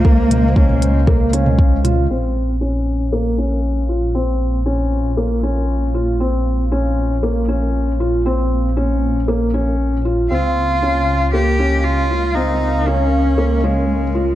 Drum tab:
HH |--x---x---x---x-|----------------|----------------|----------------|
T2 |--o--o--o--o--o-|----------------|----------------|----------------|
BD |o---o---o---o---|----------------|----------------|----------------|

HH |----------------|----------------|----------------|
T2 |----------------|----------------|----------------|
BD |----------------|----------------|----------------|